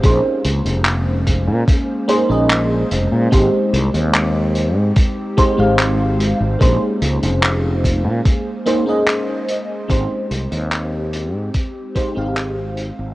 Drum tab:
HH |x-xxx-x-x-x-x-x-|x-xxx-x-x-x-x-x-|x-xxx-x-x-x-x-x-|x-xxx-x-x-x-x-x-|
CP |----x-------x---|----x-------x---|----x-------x---|----x-------x---|
BD |o-----o-o-------|o-------o-o-----|o-----o-o-------|o-------o-o-----|